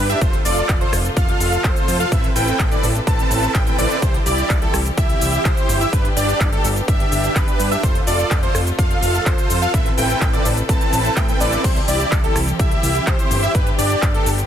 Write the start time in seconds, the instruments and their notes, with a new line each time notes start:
Already playing: analog synth bass G2, string section D3 B3 G4
0.09 supersaw synth D4 G4 E5, analog synth lead E5, closed hi-hat, cabasa
0.21 analog synth bass F1, string section C3 A3 F4, supersaw synth F4 A4 C5, analog synth lead C5, kick, closed hi-hat, cabasa
0.33 closed hi-hat
0.45 analog synth bass F1, supersaw synth F4 A4 D5, analog synth lead D5, open hi-hat, cabasa
0.57 closed hi-hat, cabasa
0.69 analog synth bass F1, kick, clap, closed hi-hat, cabasa
0.81 supersaw synth F4 A4 C5, analog synth lead C5, closed hi-hat
0.93 analog synth bass F1, cross-stick, open hi-hat, cabasa
1.05 closed hi-hat, cabasa
1.17 analog synth bass F1, supersaw synth F4 A4 F5, analog synth lead F5, kick, closed hi-hat, cabasa
1.29 closed hi-hat
1.40 analog synth bass F1, open hi-hat, cabasa
1.52 closed hi-hat, cabasa
1.64 analog synth bass F1, supersaw synth F4 A4 C5, analog synth lead C5, kick, clap, closed hi-hat, cabasa
1.76 closed hi-hat, cabasa
1.88 analog synth bass F2, open hi-hat, cabasa
2.00 supersaw synth F4 A4 F5, analog synth lead F5, closed hi-hat, cabasa
2.12 analog synth bass A1, supersaw synth C4 E4 A4 B4 E5, string section A4 B4, analog synth lead E5, kick, closed hi-hat, cabasa
2.24 closed hi-hat
2.36 analog synth bass A1, supersaw synth C4 E4 A4 B4 G5, analog synth lead G5, open hi-hat, cabasa
2.48 closed hi-hat, cabasa
2.59 analog synth bass A1, kick, clap, closed hi-hat, cabasa
2.71 supersaw synth C4 E4 A4 B4 D5, analog synth lead D5, closed hi-hat, cabasa
2.83 analog synth bass A1, open hi-hat, cabasa
2.95 closed hi-hat, cabasa
3.07 analog synth bass A1, supersaw synth C4 E4 A4 B4 A5, analog synth lead A5, kick, closed hi-hat, cabasa
3.19 closed hi-hat, cabasa
3.31 analog synth bass A1, open hi-hat, cabasa
3.43 closed hi-hat, cabasa
3.55 analog synth bass A1, supersaw synth C4 E4 A4 B4 G5, analog synth lead G5, kick, clap, closed hi-hat, cabasa
3.67 supersaw synth C4 E4 A4 B4 G5, analog synth lead G5, closed hi-hat, cabasa
3.78 analog synth bass A1, supersaw synth C4 E4 A4 B4 D5, analog synth lead D5, open hi-hat, cabasa
3.90 closed hi-hat, cabasa
4.02 analog synth bass C2, string section E3 C4 G4, supersaw synth E4 G4 C5, analog synth lead C5, kick, closed hi-hat, cabasa
4.14 closed hi-hat
4.26 analog synth bass C2, supersaw synth E4 G4 D5, analog synth lead D5, open hi-hat, cabasa
4.38 closed hi-hat, cabasa
4.50 analog synth bass C2, kick, clap, closed hi-hat, cabasa
4.62 supersaw synth E4 G4 A4, analog synth lead A4, closed hi-hat
4.74 analog synth bass C2, cross-stick, open hi-hat, cabasa
4.86 closed hi-hat, cabasa
4.97 analog synth bass C2, supersaw synth E4 G4 E5, analog synth lead E5, kick, closed hi-hat, cabasa
5.09 closed hi-hat
5.21 analog synth bass C2, open hi-hat, cabasa
5.33 closed hi-hat, cabasa
5.45 analog synth bass C2, supersaw synth E4 G4 C5, analog synth lead C5, kick, clap, closed hi-hat, cabasa
5.57 closed hi-hat, cabasa
5.69 analog synth bass G1, open hi-hat, cabasa
5.81 supersaw synth E4 G4 E5, analog synth lead E5, closed hi-hat, cabasa
5.93 analog synth bass G1, string section D3 B3, supersaw synth D4 G4 B4, analog synth lead B4, kick, closed hi-hat, cabasa
6.05 closed hi-hat
6.17 analog synth bass G1, supersaw synth D4 G4 D5, analog synth lead D5, open hi-hat, cabasa
6.29 closed hi-hat, cabasa
6.40 analog synth bass G1, kick, clap, closed hi-hat, cabasa
6.52 supersaw synth D4 G4 A4, analog synth lead A4, closed hi-hat
6.64 analog synth bass G1, open hi-hat, cabasa
6.76 closed hi-hat, cabasa
6.88 analog synth bass G1, supersaw synth D4 G4 E5, analog synth lead E5, kick, closed hi-hat, cabasa
7.00 closed hi-hat
7.12 analog synth bass G1, open hi-hat, cabasa
7.24 closed hi-hat, cabasa
7.36 analog synth bass G1, supersaw synth D4 G4 B4, analog synth lead B4, kick, clap, closed hi-hat, cabasa
7.48 closed hi-hat, cabasa
7.60 analog synth bass G2, open hi-hat, cabasa
7.71 supersaw synth D4 G4 E5, analog synth lead E5, closed hi-hat, cabasa
7.83 analog synth bass F1, string section C3 A3 F4, supersaw synth F4 A4 C5, analog synth lead C5, kick, closed hi-hat, cabasa
7.95 closed hi-hat
8.07 analog synth bass F1, supersaw synth F4 A4 D5, analog synth lead D5, open hi-hat, cabasa
8.19 closed hi-hat, cabasa
8.31 analog synth bass F1, kick, clap, closed hi-hat, cabasa
8.43 supersaw synth F4 A4 C5, analog synth lead C5, closed hi-hat
8.55 analog synth bass F1, cross-stick, open hi-hat, cabasa
8.67 closed hi-hat, cabasa
8.79 analog synth bass F1, supersaw synth F4 A4 F5, analog synth lead F5, kick, closed hi-hat, cabasa
8.91 closed hi-hat
9.02 analog synth bass F1, open hi-hat, cabasa
9.14 closed hi-hat, cabasa
9.26 analog synth bass F1, supersaw synth F4 A4 C5, analog synth lead C5, kick, clap, closed hi-hat, cabasa
9.38 closed hi-hat, cabasa
9.50 analog synth bass F2, open hi-hat, cabasa
9.62 supersaw synth F4 A4 F5, analog synth lead F5, closed hi-hat, cabasa
9.74 analog synth bass A1, supersaw synth C4 E4 A4 B4 E5, string section A4 B4, analog synth lead E5, kick, closed hi-hat, cabasa
9.86 closed hi-hat
9.98 analog synth bass A1, supersaw synth C4 E4 A4 B4 G5, analog synth lead G5, open hi-hat, cabasa
10.10 closed hi-hat, cabasa
10.21 analog synth bass A1, kick, clap, closed hi-hat, cabasa
10.33 supersaw synth C4 E4 A4 B4 D5, analog synth lead D5, closed hi-hat, cabasa
10.45 analog synth bass A1, open hi-hat, cabasa
10.57 closed hi-hat, cabasa
10.69 analog synth bass A1, supersaw synth C4 E4 A4 B4 A5, analog synth lead A5, kick, closed hi-hat, cabasa
10.81 closed hi-hat, cabasa
10.93 analog synth bass A1, open hi-hat, cabasa
11.05 closed hi-hat, cabasa
11.16 analog synth bass A2, supersaw synth C4 E4 A4 B4 G5, analog synth lead G5, kick, clap, closed hi-hat, cabasa
11.28 supersaw synth C4 E4 A4 B4 G5, analog synth lead G5, closed hi-hat, cabasa
11.40 analog synth bass A1, supersaw synth C4 E4 A4 B4 D5, analog synth lead D5, open hi-hat, cabasa
11.52 closed hi-hat, cabasa
11.64 analog synth bass C2, string section E3 C4 G4, supersaw synth E4 G4 C5, analog synth lead C5, kick, closed hi-hat, crash, cabasa
11.76 closed hi-hat
11.88 analog synth bass C2, supersaw synth E4 G4 D5, analog synth lead D5, open hi-hat, cabasa
12.00 closed hi-hat, cabasa
12.12 analog synth bass C2, kick, clap, closed hi-hat, cabasa
12.24 supersaw synth E4 G4 A4, analog synth lead A4, closed hi-hat
12.36 analog synth bass C2, cross-stick, open hi-hat, cabasa
12.48 closed hi-hat, cabasa
12.59 analog synth bass C2, supersaw synth E4 G4 E5, analog synth lead E5, kick, closed hi-hat, cabasa
12.71 closed hi-hat
12.83 analog synth bass C2, open hi-hat, cabasa
12.95 closed hi-hat, cabasa
13.07 analog synth bass C2, supersaw synth E4 G4 C5, analog synth lead C5, kick, clap, closed hi-hat, cabasa
13.19 closed hi-hat, cabasa
13.31 analog synth bass G1, open hi-hat, cabasa
13.43 supersaw synth E4 G4 E5, analog synth lead E5, closed hi-hat, cabasa
13.55 analog synth bass G1, string section D3 B3, supersaw synth D4 G4 B4, analog synth lead B4, kick, closed hi-hat, cabasa
13.67 closed hi-hat
13.78 analog synth bass G1, supersaw synth D4 G4 D5, analog synth lead D5, open hi-hat, cabasa
13.90 closed hi-hat, cabasa
14.02 analog synth bass G1, kick, clap, closed hi-hat, cabasa
14.14 supersaw synth D4 G4 A4, analog synth lead A4, closed hi-hat
14.26 analog synth bass G1, open hi-hat, cabasa
14.38 closed hi-hat, cabasa